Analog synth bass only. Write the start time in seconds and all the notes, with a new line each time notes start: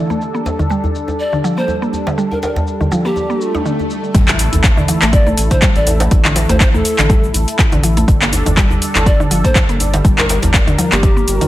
4.15 A1
4.53 A1
5.02 A1
5.38 A1
5.76 A1
6.11 A1
6.49 A1
6.99 A1
7.34 A1
7.72 A1
8.08 G1
8.46 G1
8.95 G1
9.31 G1
9.69 G1
10.05 G1
10.43 G1
10.92 G1
11.28 G1